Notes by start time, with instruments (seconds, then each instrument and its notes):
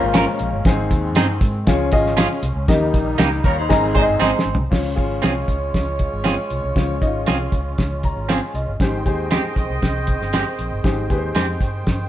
Already playing: upright piano A#2 F4 A#4 C5 F5, accordion F3 A#3 C#4
0.02 fingered electric bass G#1, clean electric guitar G#3 F4
0.14 clean electric guitar C#4 F4 A#4, upright piano A#5, snare, closed hi-hat
0.39 fingered electric bass A#1, closed hi-hat
0.53 fingered electric bass G1
0.65 fingered electric bass G#1, upright piano G#2 D#4 G#4 C5, accordion D#3 G#3 C4, kick, snare, closed hi-hat
0.91 fingered electric bass D#2, kick, closed hi-hat
1.15 fingered electric bass G2, clean electric guitar C4 D#4 G#4, snare, closed hi-hat
1.41 fingered electric bass G#2, kick, closed hi-hat
1.67 fingered electric bass C#2, upright piano C#3 F4 G#4 C#5, accordion F3 C#4, kick, snare, closed hi-hat
1.92 fingered electric bass G#1, upright piano F4 G#4 D#5, kick, closed hi-hat
2.06 snare
2.17 clean electric guitar C#4 F4 G#4, snare, closed hi-hat
2.43 fingered electric bass C2, closed hi-hat
2.56 fingered electric bass C#2
2.68 fingered electric bass D#2, upright piano D#3 G4 A#4 D#5, accordion G3 A#3 D#4, kick, snare, closed hi-hat
2.94 fingered electric bass A#1, kick, closed hi-hat
3.18 fingered electric bass C#2, clean electric guitar A#3 D#4 G4, snare, closed hi-hat
3.44 fingered electric bass D#2, horn section G3 D#4 A#4, clean electric guitar F4 C#5, kick, closed hi-hat
3.58 clean electric guitar D#4 C5
3.69 fingered electric bass G#1, upright piano G#2 G#4 C5 D#5, accordion G#3 C4, clean electric guitar A#4, kick, snare, closed hi-hat
3.83 clean electric guitar C4 G#4
3.94 horn section G#3 D#4 C5, upright piano G#4 C5 D5, kick, closed hi-hat
4.02 upright piano D#5
4.08 fingered electric bass G1
4.20 fingered electric bass G#1, horn section G#3 D#4 C5, clean electric guitar C4 D#4 G#4, snare
4.39 snare
4.45 fingered electric bass G#1
4.55 fingered electric bass C2, floor tom
4.71 fingered electric bass C#2, upright piano C#3 F4 C5 C#5, horn section G#3 F4 C#5, accordion G#3 C#4 F4, kick, snare, crash
4.95 fingered electric bass G#1, upright piano F4 G#4 C#5, kick, closed hi-hat
5.22 fingered electric bass C2, clean electric guitar C4 F4 G#4, snare, closed hi-hat
5.48 fingered electric bass C#2, kick, closed hi-hat
5.74 fingered electric bass C#2, kick, snare, closed hi-hat
5.99 kick, closed hi-hat
6.13 fingered electric bass G#1
6.24 clean electric guitar C4 F4 G#4, snare, closed hi-hat
6.50 fingered electric bass C2, closed hi-hat
6.64 fingered electric bass C2
6.76 fingered electric bass C#2, upright piano C#3 F4 C5 C#5, kick, snare, closed hi-hat
7.01 fingered electric bass G#1, upright piano D#4 C#5 D#5, kick, closed hi-hat
7.07 upright piano F4
7.26 fingered electric bass C2, clean electric guitar C4 F4 G#4, snare, closed hi-hat
7.52 fingered electric bass C#2, kick, closed hi-hat
7.78 fingered electric bass C#2, kick, snare, closed hi-hat
8.03 upright piano A#5, kick, closed hi-hat
8.16 fingered electric bass G#1
8.29 clean electric guitar C4 F4 G#4, upright piano G#5, snare, closed hi-hat
8.54 fingered electric bass C2, upright piano D#5, closed hi-hat
8.68 fingered electric bass G1
8.79 fingered electric bass G#1, upright piano G#2 G4 G#4 C5, accordion D#3 C5 G5, horn section C4 G#4 D#5, kick, snare, closed hi-hat
9.05 fingered electric bass D#2, upright piano G4 G#4 C5, kick, closed hi-hat
9.31 clean electric guitar G#3 C4 G4, snare, closed hi-hat
9.56 fingered electric bass A#1, kick, closed hi-hat
9.70 fingered electric bass C2
9.83 fingered electric bass C2, kick, snare, closed hi-hat
10.07 kick, closed hi-hat
10.20 fingered electric bass G1, snare
10.33 clean electric guitar G#3 C4 G4, snare, closed hi-hat
10.59 fingered electric bass A#1, closed hi-hat
10.72 fingered electric bass G1
10.84 fingered electric bass G#1, upright piano G#2 G4 G#4 C5, kick, snare, closed hi-hat
11.10 fingered electric bass D#2, upright piano G4 G#4 B4, kick, closed hi-hat
11.17 upright piano C5
11.35 fingered electric bass F2, clean electric guitar G#3 C4 G4, snare, closed hi-hat
11.60 fingered electric bass G2, kick, closed hi-hat
11.87 fingered electric bass G2, kick, snare, closed hi-hat